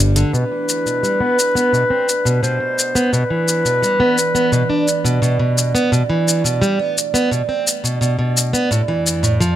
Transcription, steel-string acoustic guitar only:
0.16 0.32 D3 loud
0.33 0.43 B2 medium
0.51 0.84 E3 medium
0.86 1.02 B2 medium
1.03 1.20 G3 medium
1.20 1.37 B3 medium
1.55 1.71 B3 medium
1.73 1.83 B2 medium
1.90 2.07 C4 medium
2.25 2.41 B2 medium
2.43 2.59 B2 medium
2.60 2.94 B2 medium
2.95 3.11 B3 medium
3.13 3.23 B2 medium
3.30 3.63 E3 medium
3.65 3.82 B2 medium
3.82 3.99 G3 medium
4.00 4.16 B3 medium
4.35 4.51 B3 medium
4.52 4.62 B2 medium
4.70 4.86 D4 medium
5.05 5.20 B2 medium
5.22 5.38 B2 medium
5.39 5.73 B2 medium
5.75 5.90 B3 medium
5.92 6.02 B2 medium
6.10 6.43 E3 medium
6.44 6.61 B2 medium
6.62 6.78 G3 medium
6.79 6.96 B3 medium
7.14 7.30 B3 medium
7.31 7.41 B2 medium
7.49 7.65 C4 medium
7.84 7.99 B2 medium
8.01 8.17 B2 medium
8.19 8.52 B2 medium
8.53 8.69 B3 medium
8.71 8.81 A2 medium
8.88 9.21 E3 medium
9.23 9.40 A2 medium
9.40 9.56 F3 medium

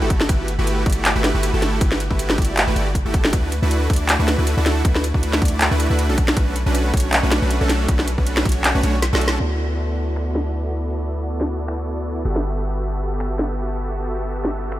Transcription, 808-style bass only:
0.02 0.27 G1 loud
0.29 0.57 G1 loud
0.59 0.84 G1 loud
0.86 1.14 G1 loud
1.16 1.32 G1 loud
1.35 1.51 G1 loud
1.54 1.79 G1 loud
1.81 2.08 G1 loud
2.11 2.36 G1 loud
2.38 2.65 G1 loud
2.67 2.74 G1 loud
2.76 3.03 G1 loud
3.05 3.34 G1 loud
3.33 3.60 D2 loud
3.62 3.88 D2 loud
3.90 4.17 D2 loud
4.19 4.36 D2 loud
4.38 4.55 D2 loud
4.57 4.83 D2 loud
4.85 5.12 D2 loud
5.14 5.40 D2 loud
5.42 5.69 D2 loud
5.71 5.88 D2 medium
5.90 6.11 D2 loud
6.09 6.35 B1 loud
6.37 6.64 B1 medium
6.66 6.92 B1 loud
6.94 7.21 B1 loud
7.23 7.40 B1 medium
7.42 7.59 B1 loud
7.61 7.87 B1 loud
7.88 8.16 B1 loud
8.18 8.44 B1 loud
8.45 8.73 B1 loud
8.75 8.82 B1 loud
8.83 9.11 B1 loud
9.13 9.39 B1 loud
9.40 12.24 D2 medium
12.25 14.80 G1 medium

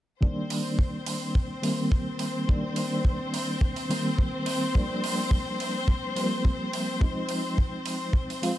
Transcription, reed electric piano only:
0.21 1.60 D#3 medium
0.21 1.60 G3 medium
0.21 1.60 A#3 medium
0.21 1.61 D4 medium
1.62 2.45 D#3 medium
1.62 2.45 G3 medium
1.62 2.45 A#3 medium
1.62 2.46 C4 medium
2.47 3.86 D#3 medium
2.47 3.87 G3 medium
2.47 3.87 A#3 medium
2.47 3.87 D4 medium
3.89 4.71 D#3 medium
3.89 4.72 G3 medium
3.89 4.72 A#3 medium
3.89 4.72 C4 medium
4.74 6.13 F3 medium
4.74 6.13 G3 medium
4.74 6.13 A#3 medium
4.74 6.14 D4 medium
6.15 6.98 F3 medium
6.15 6.98 G3 medium
6.15 6.98 A#3 medium
6.15 6.99 C4 medium
7.00 8.39 F3 medium
7.00 8.39 G#3 medium
7.00 8.40 C4 medium
7.00 8.40 D#4 medium
8.42 8.54 F3 medium
8.42 8.54 G#3 medium
8.42 8.54 C4 medium
8.42 8.54 F4 medium

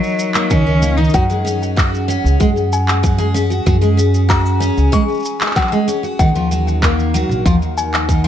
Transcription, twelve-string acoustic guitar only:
0.35 0.50 A#3 medium
0.50 0.65 D#3 medium
0.67 0.81 D#3 medium
0.82 0.96 A#3 medium
0.97 1.12 D#3 medium
1.14 1.23 F#3 medium
1.30 1.45 G#3 medium
1.45 1.75 C#4 medium
1.76 2.07 F#4 medium
2.08 2.38 C#4 medium
2.40 2.49 G#3 medium
3.03 3.17 F#3 medium
3.18 3.33 G#3 medium
3.34 3.49 C#4 loud
3.50 3.65 F#4 medium
3.66 3.75 F#3 medium
3.82 3.97 G#3 medium
3.97 4.28 C#4 medium
4.29 4.59 F#4 medium
4.60 4.91 C#4 medium
4.92 5.02 G#3 loud
5.56 5.70 F#3 medium
5.72 5.86 G#3 medium
5.88 6.02 C#4 medium
6.03 6.18 F#4 medium
6.19 6.28 D#3 medium
6.35 6.50 F3 medium
6.51 6.81 F#3 medium
6.83 7.13 A#3 medium
7.14 7.44 F#3 loud
7.46 7.55 F3 loud
8.09 8.23 D#3 medium
8.24 8.28 F3 loud

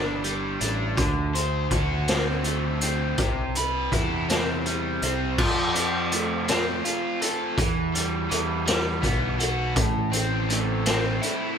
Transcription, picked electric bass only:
0.00 0.56 G1 medium
0.61 0.95 A1 medium
0.97 1.67 D2 medium
1.71 3.14 D2 medium
3.19 3.88 C2 medium
3.92 4.98 E2 medium
5.02 5.36 C2 medium
5.38 6.81 F2 medium
7.58 8.27 E2 medium
8.31 9.00 E2 medium
9.03 9.73 B1 medium
9.76 11.18 A1 medium

